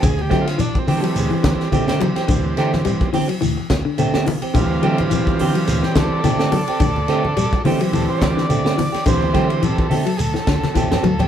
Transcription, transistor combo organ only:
X:1
M:4/4
L:1/16
Q:"Swing 16ths" 1/4=106
K:Dmix
V:1 name="Transistor combo organ"
(3^G2 =G2 =F2 (3D2 C2 A,2 (3^G,2 =G,2 [^F,G,]2- [F,G,]4- | [F,G,]6- [F,G,] z8 z | =f2 f6 f g [Ad]6- | [Ad]6 z2 A c [^cd]6 |
c2 c2 A A3 [^GA]8 |]
V:2 name="Transistor combo organ" clef=bass
z6 [E,G,C]6 z2 [E,G,C]2 | [E,G,C]6 z8 z2 | [E,G,C]8- [E,G,C]2 [E,G,C]2 z4 | z6 [E,G,C]6 z4 |
[E,G,C]6 z8 z2 |]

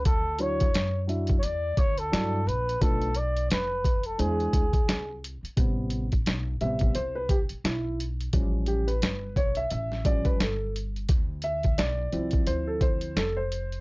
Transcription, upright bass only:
X:1
M:4/4
L:1/16
Q:"Swing 16ths" 1/4=87
K:Em
V:1 name="Upright bass" clef=bass
D,,4 F,,4 E,,2 D,,2 G,,2 _B,,,2 | B,,,4 =F,,,4 E,,2 D,,2 C,,3 z | [K:Am] A,,,4 B,,,2 A,,,2 C,,3 z B,,,4 | A,,,4 G,,,2 B,,,2 A,,,3 z G,,,4 |
D,,4 B,,,2 C,,2 D,,4 F,,,4 |]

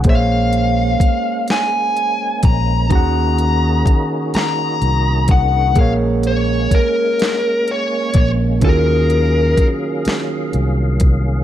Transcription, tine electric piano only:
X:1
M:6/8
L:1/8
Q:3/8=42
K:Bbm
V:1 name="Tine electric piano"
[B,Acd]6 | [E,DGAg]6 | [B,ABd]6 | [E,DFGA]6 |]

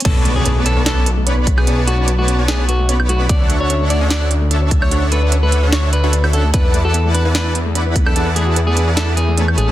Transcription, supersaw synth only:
X:1
M:4/4
L:1/16
Q:"Swing 16ths" 1/4=148
K:Bdor
V:1 name="Supersaw synth"
[B,Bcda]3 [B,Bcda]4 [B,Bcda]3 z2 [B,Bcdb]4 | [B,Bcda]3 [B,Bcda]4 [B,Bcda]3 z2 [B,Bcdb]4 | [DAcef]3 [DAcef]4 [DAcef]3 z2 [DAcea]4 | [DAcef]3 [DAcef]4 [DAcef]3 z [DAcef] z [DAceb] [DAcef] z |
[EBdfa]3 [EBdfa]4 [EBdfa]3 z2 [EBdfb]4 | [EBdfa]3 [EBdfa]4 [EBdfa]3 z2 [A,ABca]4 |]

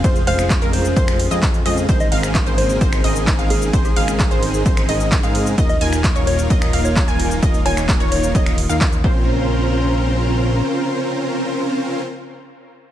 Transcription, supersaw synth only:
X:1
M:4/4
L:1/16
Q:1/4=130
K:Bbm
V:1 name="Supersaw synth"
[A,CFAc] z [A,CFAf]3 [A,CFAB]3 [A,CFAc]2 z [A,CFAe] z2 [A,CFAe]2 | [CEABc] z [CEABf]3 [CEABc]3 [CEABc]2 [CEABe]3 [CEABf]3 | [CEABc] z [CEABf]3 [CEABc]3 [CEABc]2 [CEABe]3 [CEABf]3 | [B,EFBe] z [B,EFBa]3 [B,EFBd]3 [B,EFBe]2 [B,EFBf]3 [B,EFBa]3 |
[B,EFBe] z [B,EFBa]3 [B,EFBd]3 [B,EFBe]2 z [B,EFBf] z2 [CDFBc]2- | [CDFBc]16- | [CDFBc]16 |]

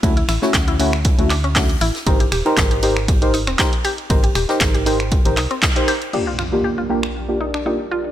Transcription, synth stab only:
X:1
M:4/4
L:1/16
Q:"Swing 16ths" 1/4=118
K:Eb
V:1 name="Synth stab"
[=A,^C=E^F] z2 [A,CEF]3 [A,CEF] z2 [A,CEF] z2 [A,CEF] z3 | [EGBc] z2 [EGBc]3 [EGBc] z2 [EGBc] z2 [EGBc] z3 | [EGBc] z2 [EGBc]3 [EGBc] z2 [EGBc] z3 [EGBc] z2 | [B,DFG] z2 [B,DFG]3 [B,DFG] z2 [B,DFG] z2 [B,DFG] z3 |]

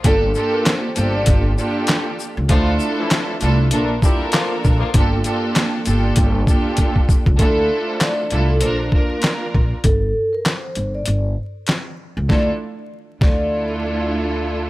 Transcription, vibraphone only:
X:1
M:4/4
L:1/16
Q:"Swing 16ths" 1/4=98
K:Dm
V:1 name="Vibraphone"
A3 B c3 d2 z6 z | z16 | z16 | A3 c d3 A c2 B2 z4 |
A3 B c3 d2 z6 z | d2 z4 d6 z4 |]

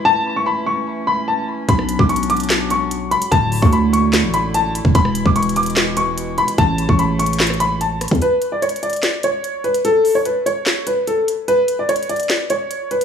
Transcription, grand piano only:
X:1
M:4/4
L:1/16
Q:1/4=147
K:Amix
V:1 name="Grand piano"
a3 c' b2 c'4 b2 a2 z2 | b3 d' c'2 d'4 c'4 b2 | a3 c' b2 c'4 b2 a2 z2 | b3 d' c'2 d'4 c'4 b2 |
a3 c' b2 c'4 b2 a2 z2 | B3 d c2 d4 c4 B2 | A3 c B2 c4 B2 A2 z2 | B3 d c2 d4 c4 B2 |]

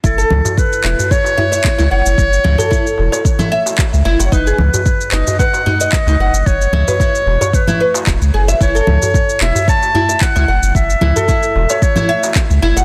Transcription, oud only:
X:1
M:4/4
L:1/16
Q:"Swing 16ths" 1/4=112
K:F#dor
V:1 name="Oud"
E A z4 E z c z E e2 E f z | z2 E A E z2 c2 E e4 E f | D G z4 D z B z D d2 D f z | z2 E B E z2 c2 E B z3 G e |
E A z4 E z c z E e2 E f z | z2 E A E z2 c2 E e4 E f |]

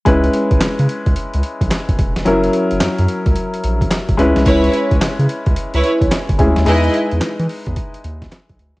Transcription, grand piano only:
X:1
M:4/4
L:1/8
Q:"Swing 16ths" 1/4=109
K:C#dor
V:1 name="Grand piano"
[G,CEB]8 | [F,CEA]6- [F,CEA] [G,CEB]- | [G,CEB]6- [G,CEB] [G,CEG] | [G,DEB]8 |]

